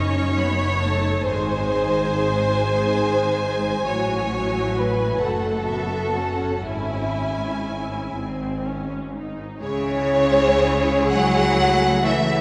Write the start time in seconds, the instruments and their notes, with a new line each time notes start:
Already playing: double bass section F#1, cello section F#2, viola section C#4 D#4, violin section C#5 C#6
0.38 viola section B3, violin section B5
0.81 viola section A3, violin section A5
1.24 double bass section G#1, cello section G#2, viola section G#3 D#4, violin section C5 G#5
2.58 viola section D#4
3.85 double bass section A1, cello section A2, viola section F#3 F#4, violin section C#5
4.75 violin section B4
5.20 double bass section F#1, cello section F#2, viola section A3 F#4, violin section A4 F#5
5.68 viola section B3, violin section E5
6.16 viola section C#4, violin section F#5
6.65 double bass section G#1, cello section G#2, viola section C#4 E4, violin section E4 G#5
8.15 double bass section G#1, cello section G#2, viola section C4
8.64 viola section C#4
9.14 viola section D#4
9.62 double bass section C#2, cello section C#3, viola section G#3 E4, violin section G#4 C#5
11.13 cello section F#3, violin section F#5
11.61 viola section A3
12.05 cello section E3, violin section E5